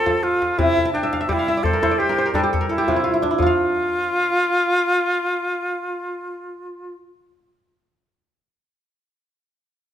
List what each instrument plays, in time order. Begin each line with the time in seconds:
Already playing: kora C4 F4 G4 A4, flute A4
0.06 kora F3, djembe tone
0.23 flute F4, kora A4
0.42 djembe slap
0.58 kora C3, flute E4, djembe slap, djembe bass
0.78 djembe tone
0.85 kora A5
0.93 flute D4, kora G5
1.03 kora E5
1.13 kora F5, djembe slap
1.21 kora E5
1.28 kora G3 D5, flute G4, djembe tone
1.33 flute E4
1.39 kora F5
1.48 kora E5
1.57 kora D5
1.63 flute A4, kora C5, djembe bass
1.73 kora A#4
1.83 kora E4 C5, djembe slap, djembe tone
1.91 kora D5
1.99 flute G4, kora C5
2.09 kora A#4
2.18 kora C5
2.26 kora A#4
2.33 kora G3 A4, flute D4, djembe tone
2.43 kora G4
2.53 kora A4, djembe slap, djembe bass
2.61 kora A#4
2.68 flute E4, kora A4
2.78 kora G4
2.88 kora C3 F4, djembe slap, djembe tone
2.96 kora E4
3.04 kora F4, djembe slap
3.14 kora E4
3.22 kora D4, djembe slap
3.31 kora E4
3.38 kora F3, flute F4, djembe bass
3.42 kora F4 F5